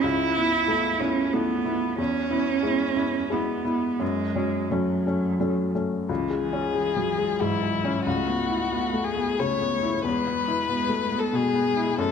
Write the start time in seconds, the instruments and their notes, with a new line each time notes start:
0.02 felt piano C#2, cello E4
0.37 felt piano B3 E4
0.68 felt piano A3 B3 E4
1.00 felt piano B3 E4, cello C#4
1.33 felt piano A3 B3 E4, cello B3
1.65 felt piano B3 E4
1.98 felt piano E2, cello C#4
2.30 felt piano B3 E4
2.63 felt piano G#3 B3 E4
2.96 felt piano B3 E4
3.30 felt piano G#3 B3 E4, cello B3
3.65 felt piano B3 E4
3.99 felt piano F#2, cello G#3
4.36 felt piano F#3 C#4
4.71 cello F#3, felt piano F#3 A3 C#4
5.06 felt piano A3 C#4
5.40 felt piano F#3 A3 C#4
5.75 felt piano A3 C#4
6.09 felt piano C#2, cello E3
6.30 felt piano G#3
6.41 cello E3, violin G#4
6.53 felt piano C#4
6.75 cello E3, felt piano G#3
6.96 felt piano F#3
7.09 cello E3
7.18 felt piano G#3
7.40 felt piano G#2, cello E3, violin E4
7.63 felt piano G#3
7.72 cello E3
7.85 felt piano C#4
8.05 felt piano C#2, cello A3, violin F#4
8.27 felt piano B3
8.41 cello A3
8.49 felt piano E4
8.71 cello A3, felt piano B3
8.93 felt piano A3
9.04 cello A3, violin G#4
9.17 felt piano B3
9.39 felt piano C#3, cello A3, violin C#5
9.61 felt piano B3
9.74 cello A3
9.83 felt piano E4
10.04 felt piano E2, cello G#3, violin B4
10.27 felt piano B3
10.40 cello G#3
10.48 felt piano E4
10.69 cello G#3, felt piano B3
10.89 felt piano A3
11.03 cello G#3
11.12 felt piano B3
11.19 violin A4
11.33 felt piano B2, cello G#3, violin G#4
11.54 felt piano B3
11.67 cello G#3
11.77 felt piano E4
11.98 felt piano F#2, cello A3, violin A4